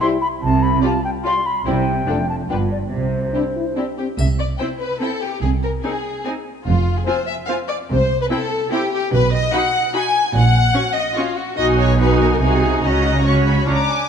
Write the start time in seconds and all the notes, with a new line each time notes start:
0.01 G3 E4 G4 C5 C6
0.22 B5
0.42 C2 C3 A5
0.63 B5
0.83 G3 F4 G4 D5 A5
1.05 G5
1.24 G3 F4 G4 D5 C6
1.46 B5
1.66 C2 C3 G3 E4 G4 C5 G5
2.07 F1 F2 A3 D4 F4 A4
2.30 A5
2.49 G1 G2 B3 D4 F4 B4 G5
2.72 D5
2.92 C2 C3 C5
3.34 C4 D4 E4 G4
3.55 E4
3.75 C4 D4 E4 G4
3.98 C4 G4
4.18 C2 C3 E5, triangle
4.39 D5
4.59 C4 E4 C5 G5
4.80 B4
5.01 C4 E4 A4 G5
5.22 G4
5.41 C2 C3 G#4
5.63 A#4
5.83 C4 D#4 G#4 G#5
6.25 C4 D#4 G#5
6.65 F1 F2 F4
6.97 G#4
7.05 C4 F4 C5 G#5
7.27 E5
7.47 C4 F4 F5 G#5
7.68 D5
7.90 C2 C3 C5
8.22 B4
8.30 C4 E4 A4 G5
8.71 C4 E4 G4 G5
8.93 G4
9.13 B1 B2 B4
9.34 D#5
9.53 D#4 F#4 F#5 B5
9.94 D#4 F#4 G#5 B5
10.34 A#1 A#2 F#5
10.74 C#4 F#4 C#6
10.96 D#5
11.15 C#4 F4 F#4 C#6
11.37 F#4
11.57 B1 B2 D#4 F#4 D#5 G#5
11.78 C#5
11.99 D#4 F#4 B4 G#5
12.20 A#4
12.33 A#4
12.40 C2 C3 D#4 F#4 G#4 G#5
12.82 C#2 C#3 C#4 F#4 D#5 A#5
13.24 C#4 F#4 C#5 C#6
13.46 B5
13.66 C#2 C#3 C#4 D4 F4 A#5 D6
13.90 G#5